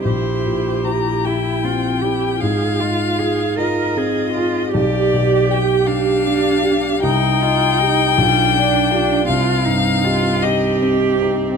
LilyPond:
<<
  \new Staff \with { instrumentName = "Violin" } { \time 6/8 \key c \minor \tempo 4. = 52 c''4 bes''8 g''4. | f''4. ees''4. | d''4 g''8 f''4. | g''2. |
f''4. ees''8 r4 | }
  \new Staff \with { instrumentName = "Cello" } { \time 6/8 \key c \minor g'4. e'8 f'8 g'8 | aes'8 f'8 aes'8 bes'8 aes'8 f'8 | g'4. d'4. | ees'8 f'8 ees'8 d'4. |
f'8 ees'8 f'8 g'4. | }
  \new Staff \with { instrumentName = "Grand piano" } { \time 6/8 \key c \minor bes,,8 bes,8 <e' g'>8 <e' g'>8 c'8 <e' g'>8 | aes,8 aes8 <f' aes'>8 <f' aes'>8 c'8 <f' aes'>8 | b,,8 b,8 g'8 g'8 d'8 g'8 | c,8 ees'8 g'8 b,,8 d'8 <f' g'>8 |
c,8 g,8 <ees' g'>8 <ees' g'>8 c'8 <ees' g'>8 | }
  \new Staff \with { instrumentName = "Viola" } { \time 6/8 \key c \minor e'4. e'8 c'8 e'8 | f'2. | g'2. | ees'4. f'8 d'8 d'8 |
c'2. | }
>>